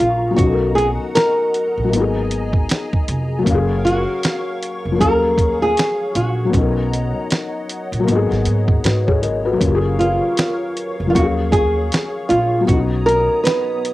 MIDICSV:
0, 0, Header, 1, 6, 480
1, 0, Start_track
1, 0, Tempo, 769231
1, 235, Time_signature, 4, 2, 24, 8
1, 8695, End_track
2, 0, Start_track
2, 0, Title_t, "Analog synth pad"
2, 0, Program_c, 0, 89
2, 0, Note_on_c, 0, 68, 72
2, 0, Note_on_c, 0, 77, 65
2, 0, Note_on_c, 0, 82, 67
2, 0, Note_on_c, 0, 85, 83
2, 216, Note_off_c, 0, 85, 0
2, 223, Note_off_c, 0, 77, 0
2, 224, Note_off_c, 0, 68, 0
2, 230, Note_on_c, 0, 75, 74
2, 231, Note_on_c, 0, 66, 74
2, 233, Note_on_c, 0, 78, 84
2, 1183, Note_off_c, 0, 66, 0
2, 1184, Note_off_c, 0, 78, 0
2, 1196, Note_on_c, 0, 80, 83
2, 1199, Note_on_c, 0, 68, 79
2, 2128, Note_off_c, 0, 82, 0
2, 2133, Note_off_c, 0, 75, 0
2, 2146, Note_off_c, 0, 80, 0
2, 2147, Note_off_c, 0, 68, 0
2, 2158, Note_on_c, 0, 77, 73
2, 2158, Note_on_c, 0, 85, 80
2, 2159, Note_on_c, 0, 73, 69
2, 2162, Note_on_c, 0, 70, 77
2, 3107, Note_off_c, 0, 77, 0
2, 3109, Note_off_c, 0, 70, 0
2, 3122, Note_on_c, 0, 68, 73
2, 3126, Note_on_c, 0, 77, 69
2, 4057, Note_off_c, 0, 85, 0
2, 4069, Note_off_c, 0, 68, 0
2, 4071, Note_off_c, 0, 77, 0
2, 4080, Note_on_c, 0, 78, 82
2, 4081, Note_on_c, 0, 75, 72
2, 4081, Note_on_c, 0, 82, 78
2, 5028, Note_off_c, 0, 82, 0
2, 5038, Note_on_c, 0, 68, 73
2, 5978, Note_off_c, 0, 78, 0
2, 5979, Note_off_c, 0, 75, 0
2, 5987, Note_off_c, 0, 68, 0
2, 5991, Note_on_c, 0, 70, 74
2, 5991, Note_on_c, 0, 77, 69
2, 5992, Note_on_c, 0, 85, 84
2, 6943, Note_off_c, 0, 70, 0
2, 6948, Note_on_c, 0, 68, 77
2, 7894, Note_off_c, 0, 77, 0
2, 7894, Note_off_c, 0, 85, 0
2, 7902, Note_off_c, 0, 68, 0
2, 7909, Note_on_c, 0, 59, 77
2, 7909, Note_on_c, 0, 87, 88
2, 7910, Note_on_c, 0, 82, 69
2, 8695, Note_off_c, 0, 59, 0
2, 8695, Note_off_c, 0, 73, 0
2, 8695, Note_off_c, 0, 82, 0
2, 8695, Note_off_c, 0, 87, 0
2, 8695, End_track
3, 0, Start_track
3, 0, Title_t, "Nylon-string guitar"
3, 0, Program_c, 1, 24
3, 0, Note_on_c, 1, 65, 75
3, 215, Note_off_c, 1, 65, 0
3, 227, Note_on_c, 1, 66, 89
3, 467, Note_off_c, 1, 66, 0
3, 469, Note_on_c, 1, 68, 99
3, 535, Note_off_c, 1, 68, 0
3, 718, Note_on_c, 1, 70, 93
3, 1652, Note_off_c, 1, 70, 0
3, 2401, Note_on_c, 1, 66, 94
3, 3121, Note_off_c, 1, 66, 0
3, 3123, Note_on_c, 1, 70, 112
3, 3506, Note_off_c, 1, 70, 0
3, 3509, Note_on_c, 1, 68, 100
3, 3840, Note_off_c, 1, 68, 0
3, 3843, Note_on_c, 1, 66, 78
3, 4774, Note_off_c, 1, 66, 0
3, 6234, Note_on_c, 1, 65, 89
3, 6919, Note_off_c, 1, 65, 0
3, 6926, Note_on_c, 1, 65, 61
3, 6955, Note_off_c, 1, 65, 0
3, 6958, Note_on_c, 1, 66, 94
3, 7022, Note_off_c, 1, 66, 0
3, 7189, Note_on_c, 1, 68, 94
3, 7665, Note_off_c, 1, 68, 0
3, 7668, Note_on_c, 1, 65, 86
3, 7905, Note_off_c, 1, 65, 0
3, 7907, Note_on_c, 1, 66, 86
3, 7973, Note_off_c, 1, 66, 0
3, 8149, Note_on_c, 1, 70, 103
3, 8381, Note_off_c, 1, 70, 0
3, 8384, Note_on_c, 1, 71, 92
3, 8695, Note_off_c, 1, 71, 0
3, 8695, End_track
4, 0, Start_track
4, 0, Title_t, "Felt piano"
4, 0, Program_c, 2, 0
4, 0, Control_c, 2, 64, 127
4, 0, Note_on_c, 2, 54, 64
4, 0, Note_on_c, 2, 58, 56
4, 0, Note_on_c, 2, 61, 54
4, 0, Note_on_c, 2, 68, 64
4, 0, Note_on_c, 2, 77, 59
4, 181, Note_off_c, 2, 54, 0
4, 191, Note_on_c, 2, 54, 60
4, 206, Note_off_c, 2, 58, 0
4, 214, Note_on_c, 2, 59, 57
4, 218, Note_off_c, 2, 61, 0
4, 231, Note_off_c, 2, 77, 0
4, 239, Note_on_c, 2, 61, 55
4, 241, Control_c, 2, 64, 0
4, 243, Note_off_c, 2, 68, 0
4, 265, Note_on_c, 2, 63, 58
4, 287, Note_on_c, 2, 69, 55
4, 310, Note_off_c, 2, 69, 0
4, 328, Note_on_c, 2, 70, 71
4, 337, Control_c, 2, 64, 127
4, 1141, Note_off_c, 2, 54, 0
4, 1150, Note_on_c, 2, 54, 61
4, 1165, Note_off_c, 2, 59, 0
4, 1176, Note_on_c, 2, 58, 59
4, 1178, Note_off_c, 2, 61, 0
4, 1191, Note_off_c, 2, 63, 0
4, 1199, Note_on_c, 2, 59, 58
4, 1203, Control_c, 2, 64, 0
4, 1223, Note_off_c, 2, 70, 0
4, 1227, Note_on_c, 2, 63, 58
4, 1250, Note_on_c, 2, 68, 68
4, 1315, Control_c, 2, 64, 127
4, 2103, Note_off_c, 2, 54, 0
4, 2112, Note_on_c, 2, 54, 73
4, 2126, Note_off_c, 2, 58, 0
4, 2138, Note_off_c, 2, 59, 0
4, 2138, Note_on_c, 2, 58, 68
4, 2152, Note_off_c, 2, 63, 0
4, 2160, Note_on_c, 2, 61, 68
4, 2162, Control_c, 2, 64, 0
4, 2164, Note_off_c, 2, 68, 0
4, 2184, Note_on_c, 2, 77, 65
4, 2211, Note_on_c, 2, 68, 88
4, 2280, Control_c, 2, 64, 127
4, 3068, Note_on_c, 2, 53, 51
4, 3074, Note_off_c, 2, 54, 0
4, 3082, Note_off_c, 2, 58, 0
4, 3092, Note_on_c, 2, 58, 58
4, 3098, Note_off_c, 2, 61, 0
4, 3109, Note_on_c, 2, 54, 64
4, 3110, Note_off_c, 2, 77, 0
4, 3117, Note_on_c, 2, 61, 60
4, 3124, Note_off_c, 2, 68, 0
4, 3124, Control_c, 2, 64, 0
4, 3140, Note_off_c, 2, 53, 0
4, 3142, Note_on_c, 2, 77, 55
4, 3166, Note_on_c, 2, 68, 73
4, 3242, Control_c, 2, 64, 127
4, 4017, Note_off_c, 2, 54, 0
4, 4026, Note_on_c, 2, 54, 61
4, 4044, Note_off_c, 2, 58, 0
4, 4053, Note_on_c, 2, 59, 59
4, 4057, Note_off_c, 2, 61, 0
4, 4070, Note_off_c, 2, 77, 0
4, 4075, Note_on_c, 2, 61, 56
4, 4082, Note_off_c, 2, 68, 0
4, 4083, Control_c, 2, 64, 0
4, 4101, Note_on_c, 2, 63, 61
4, 4125, Note_on_c, 2, 70, 69
4, 4207, Control_c, 2, 64, 127
4, 4981, Note_off_c, 2, 54, 0
4, 4990, Note_on_c, 2, 54, 78
4, 5004, Note_off_c, 2, 59, 0
4, 5013, Note_on_c, 2, 58, 67
4, 5016, Note_off_c, 2, 61, 0
4, 5029, Note_off_c, 2, 63, 0
4, 5040, Note_on_c, 2, 59, 69
4, 5041, Note_off_c, 2, 70, 0
4, 5044, Control_c, 2, 64, 0
4, 5064, Note_on_c, 2, 63, 65
4, 5086, Note_on_c, 2, 68, 80
4, 5157, Control_c, 2, 64, 127
4, 5518, Note_on_c, 2, 71, 62
4, 5519, Note_on_c, 2, 66, 50
4, 5531, Note_off_c, 2, 68, 0
4, 5654, Note_off_c, 2, 71, 0
4, 5655, Note_off_c, 2, 66, 0
4, 5660, Note_on_c, 2, 73, 63
4, 5665, Note_on_c, 2, 68, 58
4, 5750, Note_off_c, 2, 73, 0
4, 5753, Note_off_c, 2, 68, 0
4, 5753, Note_on_c, 2, 75, 61
4, 5757, Note_on_c, 2, 70, 55
4, 5892, Note_off_c, 2, 75, 0
4, 5893, Note_off_c, 2, 70, 0
4, 5897, Note_on_c, 2, 71, 66
4, 5901, Note_on_c, 2, 66, 49
4, 5935, Note_off_c, 2, 54, 0
4, 5945, Note_on_c, 2, 54, 72
4, 5959, Note_off_c, 2, 58, 0
4, 5968, Note_on_c, 2, 58, 69
4, 5978, Note_off_c, 2, 59, 0
4, 5991, Note_off_c, 2, 63, 0
4, 5992, Note_on_c, 2, 61, 63
4, 6002, Control_c, 2, 64, 0
4, 6017, Note_on_c, 2, 65, 67
4, 6041, Note_on_c, 2, 67, 64
4, 6067, Note_off_c, 2, 67, 0
4, 6082, Note_on_c, 2, 68, 87
4, 6106, Control_c, 2, 64, 127
4, 6126, Note_off_c, 2, 71, 0
4, 6128, Note_off_c, 2, 66, 0
4, 6907, Note_on_c, 2, 53, 50
4, 6910, Note_off_c, 2, 54, 0
4, 6922, Note_off_c, 2, 58, 0
4, 6931, Note_on_c, 2, 58, 53
4, 6934, Note_off_c, 2, 61, 0
4, 6947, Note_off_c, 2, 65, 0
4, 6947, Note_on_c, 2, 54, 63
4, 6956, Note_on_c, 2, 61, 58
4, 6963, Control_c, 2, 64, 0
4, 6980, Note_off_c, 2, 53, 0
4, 6980, Note_off_c, 2, 68, 0
4, 6981, Note_on_c, 2, 77, 59
4, 7005, Note_on_c, 2, 68, 67
4, 7083, Control_c, 2, 64, 127
4, 7857, Note_off_c, 2, 54, 0
4, 7866, Note_on_c, 2, 54, 61
4, 7883, Note_off_c, 2, 58, 0
4, 7890, Note_on_c, 2, 59, 55
4, 7896, Note_off_c, 2, 61, 0
4, 7909, Note_off_c, 2, 77, 0
4, 7915, Note_on_c, 2, 61, 57
4, 7921, Note_off_c, 2, 68, 0
4, 7924, Control_c, 2, 64, 0
4, 7939, Note_on_c, 2, 63, 57
4, 7966, Note_on_c, 2, 66, 69
4, 8021, Control_c, 2, 64, 127
4, 8695, Note_off_c, 2, 54, 0
4, 8695, Note_off_c, 2, 59, 0
4, 8695, Note_off_c, 2, 61, 0
4, 8695, Note_off_c, 2, 63, 0
4, 8695, Note_off_c, 2, 66, 0
4, 8695, End_track
5, 0, Start_track
5, 0, Title_t, "Upright bass"
5, 0, Program_c, 3, 32
5, 0, Note_on_c, 3, 34, 88
5, 218, Note_off_c, 3, 34, 0
5, 239, Note_on_c, 3, 35, 104
5, 597, Note_off_c, 3, 35, 0
5, 1108, Note_on_c, 3, 34, 83
5, 1199, Note_off_c, 3, 34, 0
5, 1199, Note_on_c, 3, 32, 114
5, 1652, Note_off_c, 3, 32, 0
5, 1924, Note_on_c, 3, 29, 85
5, 2140, Note_off_c, 3, 29, 0
5, 2162, Note_on_c, 3, 30, 97
5, 2518, Note_off_c, 3, 30, 0
5, 3029, Note_on_c, 3, 29, 79
5, 3112, Note_off_c, 3, 29, 0
5, 3128, Note_on_c, 3, 39, 101
5, 3577, Note_off_c, 3, 39, 0
5, 3840, Note_on_c, 3, 34, 91
5, 4058, Note_off_c, 3, 34, 0
5, 4079, Note_on_c, 3, 35, 110
5, 4437, Note_off_c, 3, 35, 0
5, 4943, Note_on_c, 3, 34, 92
5, 5029, Note_off_c, 3, 34, 0
5, 5039, Note_on_c, 3, 32, 101
5, 5170, Note_off_c, 3, 32, 0
5, 5185, Note_on_c, 3, 32, 83
5, 5270, Note_off_c, 3, 32, 0
5, 5281, Note_on_c, 3, 44, 99
5, 5499, Note_off_c, 3, 44, 0
5, 5519, Note_on_c, 3, 44, 85
5, 5758, Note_on_c, 3, 32, 90
5, 5767, Note_off_c, 3, 44, 0
5, 5977, Note_off_c, 3, 32, 0
5, 5998, Note_on_c, 3, 30, 94
5, 6356, Note_off_c, 3, 30, 0
5, 6863, Note_on_c, 3, 29, 82
5, 6949, Note_off_c, 3, 29, 0
5, 6963, Note_on_c, 3, 39, 108
5, 7414, Note_off_c, 3, 39, 0
5, 7681, Note_on_c, 3, 34, 92
5, 7899, Note_off_c, 3, 34, 0
5, 7915, Note_on_c, 3, 35, 100
5, 8275, Note_off_c, 3, 35, 0
5, 8695, End_track
6, 0, Start_track
6, 0, Title_t, "Drums"
6, 0, Note_on_c, 9, 42, 64
6, 62, Note_off_c, 9, 42, 0
6, 237, Note_on_c, 9, 36, 93
6, 241, Note_on_c, 9, 42, 78
6, 299, Note_off_c, 9, 36, 0
6, 303, Note_off_c, 9, 42, 0
6, 487, Note_on_c, 9, 42, 54
6, 550, Note_off_c, 9, 42, 0
6, 721, Note_on_c, 9, 42, 74
6, 730, Note_on_c, 9, 38, 108
6, 783, Note_off_c, 9, 42, 0
6, 793, Note_off_c, 9, 38, 0
6, 963, Note_on_c, 9, 42, 59
6, 1025, Note_off_c, 9, 42, 0
6, 1207, Note_on_c, 9, 42, 73
6, 1269, Note_off_c, 9, 42, 0
6, 1442, Note_on_c, 9, 42, 61
6, 1504, Note_off_c, 9, 42, 0
6, 1580, Note_on_c, 9, 36, 90
6, 1642, Note_off_c, 9, 36, 0
6, 1680, Note_on_c, 9, 42, 72
6, 1693, Note_on_c, 9, 38, 110
6, 1743, Note_off_c, 9, 42, 0
6, 1756, Note_off_c, 9, 38, 0
6, 1829, Note_on_c, 9, 36, 87
6, 1891, Note_off_c, 9, 36, 0
6, 1922, Note_on_c, 9, 42, 69
6, 1985, Note_off_c, 9, 42, 0
6, 2159, Note_on_c, 9, 36, 90
6, 2165, Note_on_c, 9, 42, 73
6, 2222, Note_off_c, 9, 36, 0
6, 2228, Note_off_c, 9, 42, 0
6, 2413, Note_on_c, 9, 42, 56
6, 2475, Note_off_c, 9, 42, 0
6, 2642, Note_on_c, 9, 42, 79
6, 2651, Note_on_c, 9, 38, 114
6, 2704, Note_off_c, 9, 42, 0
6, 2714, Note_off_c, 9, 38, 0
6, 2886, Note_on_c, 9, 42, 63
6, 2949, Note_off_c, 9, 42, 0
6, 3126, Note_on_c, 9, 36, 86
6, 3129, Note_on_c, 9, 42, 72
6, 3188, Note_off_c, 9, 36, 0
6, 3191, Note_off_c, 9, 42, 0
6, 3355, Note_on_c, 9, 36, 96
6, 3361, Note_on_c, 9, 42, 63
6, 3418, Note_off_c, 9, 36, 0
6, 3424, Note_off_c, 9, 42, 0
6, 3602, Note_on_c, 9, 42, 69
6, 3615, Note_on_c, 9, 38, 106
6, 3665, Note_off_c, 9, 42, 0
6, 3677, Note_off_c, 9, 38, 0
6, 3839, Note_on_c, 9, 42, 68
6, 3902, Note_off_c, 9, 42, 0
6, 4077, Note_on_c, 9, 36, 96
6, 4082, Note_on_c, 9, 42, 74
6, 4139, Note_off_c, 9, 36, 0
6, 4144, Note_off_c, 9, 42, 0
6, 4327, Note_on_c, 9, 42, 55
6, 4390, Note_off_c, 9, 42, 0
6, 4558, Note_on_c, 9, 42, 77
6, 4568, Note_on_c, 9, 38, 117
6, 4621, Note_off_c, 9, 42, 0
6, 4631, Note_off_c, 9, 38, 0
6, 4802, Note_on_c, 9, 42, 63
6, 4864, Note_off_c, 9, 42, 0
6, 4949, Note_on_c, 9, 42, 46
6, 5011, Note_off_c, 9, 42, 0
6, 5045, Note_on_c, 9, 42, 75
6, 5107, Note_off_c, 9, 42, 0
6, 5192, Note_on_c, 9, 38, 32
6, 5254, Note_off_c, 9, 38, 0
6, 5275, Note_on_c, 9, 42, 63
6, 5338, Note_off_c, 9, 42, 0
6, 5416, Note_on_c, 9, 36, 88
6, 5478, Note_off_c, 9, 36, 0
6, 5517, Note_on_c, 9, 42, 72
6, 5530, Note_on_c, 9, 38, 104
6, 5579, Note_off_c, 9, 42, 0
6, 5592, Note_off_c, 9, 38, 0
6, 5666, Note_on_c, 9, 36, 84
6, 5728, Note_off_c, 9, 36, 0
6, 5759, Note_on_c, 9, 42, 66
6, 5822, Note_off_c, 9, 42, 0
6, 5995, Note_on_c, 9, 36, 88
6, 5999, Note_on_c, 9, 42, 77
6, 6057, Note_off_c, 9, 36, 0
6, 6061, Note_off_c, 9, 42, 0
6, 6244, Note_on_c, 9, 42, 54
6, 6306, Note_off_c, 9, 42, 0
6, 6473, Note_on_c, 9, 42, 74
6, 6483, Note_on_c, 9, 38, 109
6, 6535, Note_off_c, 9, 42, 0
6, 6545, Note_off_c, 9, 38, 0
6, 6719, Note_on_c, 9, 42, 65
6, 6781, Note_off_c, 9, 42, 0
6, 6960, Note_on_c, 9, 36, 81
6, 6963, Note_on_c, 9, 42, 75
6, 7022, Note_off_c, 9, 36, 0
6, 7026, Note_off_c, 9, 42, 0
6, 7191, Note_on_c, 9, 36, 98
6, 7196, Note_on_c, 9, 42, 62
6, 7253, Note_off_c, 9, 36, 0
6, 7258, Note_off_c, 9, 42, 0
6, 7438, Note_on_c, 9, 42, 66
6, 7451, Note_on_c, 9, 38, 116
6, 7501, Note_off_c, 9, 42, 0
6, 7514, Note_off_c, 9, 38, 0
6, 7676, Note_on_c, 9, 42, 64
6, 7738, Note_off_c, 9, 42, 0
6, 7914, Note_on_c, 9, 36, 95
6, 7918, Note_on_c, 9, 42, 72
6, 7976, Note_off_c, 9, 36, 0
6, 7981, Note_off_c, 9, 42, 0
6, 8166, Note_on_c, 9, 42, 56
6, 8228, Note_off_c, 9, 42, 0
6, 8394, Note_on_c, 9, 42, 72
6, 8404, Note_on_c, 9, 38, 112
6, 8457, Note_off_c, 9, 42, 0
6, 8467, Note_off_c, 9, 38, 0
6, 8642, Note_on_c, 9, 42, 66
6, 8695, Note_off_c, 9, 42, 0
6, 8695, End_track
0, 0, End_of_file